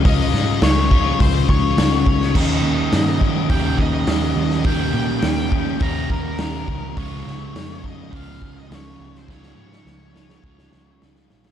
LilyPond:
<<
  \new Staff \with { instrumentName = "Lead electric guitar" } { \time 4/4 \key des \lydian \tempo 4 = 104 ees''4 des''4 c''8 des''4. | ees''2 g''8 ees''4. | g''2 bes''8 bes'4. | des''4. ees''8 f''8. ees''16 des''8. c''16 |
des''2. r4 | }
  \new Staff \with { instrumentName = "Overdriven electric guitar" } { \time 4/4 \key des \lydian <des aes des' f'>4. <des aes des' f'>4. <des aes des' f'>4 | <ees bes des' g'>4. <ees bes des' g'>4. <ees bes des' g'>4 | <ees bes des' g'>4. <ees bes des' g'>4. <ees bes des' g'>4 | <des f aes des' f'>4. <des f aes des' f'>4. <des f aes des' f'>4 |
<des f aes des' f'>4. <des f aes des' f'>4. <des f aes des' f'>4 | }
  \new Staff \with { instrumentName = "Overdriven electric guitar" } { \time 4/4 \key des \lydian r1 | <ees bes des' g'>2 <ees bes des' g'>2 | <ees bes des' g'>2 <ees bes des' g'>2 | <des f aes des' f'>2 <des f aes des' f'>2 |
<des f aes des' f'>2 <des f aes des' f'>2 | }
  \new Staff \with { instrumentName = "Picked electric bass" } { \clef bass \time 4/4 \key des \lydian des,8 aes,8 des,4 des,8 des,8 des,8 des,8 | ees,8 ees,8 g,4 ees,8 ees,8 ees,8 ees,8 | ees,8 bes,8 ees,4 ees,8 ees,8 ees,8 des,8 | des,8 des,8 f,4 des,8 des,8 des,8 des,8 |
des,8 aes,8 des,4 des,8 des,8 des,8 bes,,8 | }
  \new DrumStaff \with { instrumentName = "Drums" } \drummode { \time 4/4 <hho bd>8 sn8 <hho sn>8 bd8 <hho bd>8 bd8 <hho sn>8 bd16 sn16 | <cymc bd>4 <hho sn>8 bd8 <hho bd>8 bd8 <hho sn>8. sn16 | <hho bd>4 <hho sn>8 bd8 <hho bd>8 bd8 <hho sn>8 bd8 | <hho bd>8 sn8 <hho sn>8 bd8 <hho bd>8 bd8 <hho sn>8. sn16 |
<bd sn>16 sn8 sn16 sn8 sn16 sn16 bd16 sn16 sn8 sn16 sn16 sn16 sn16 | }
>>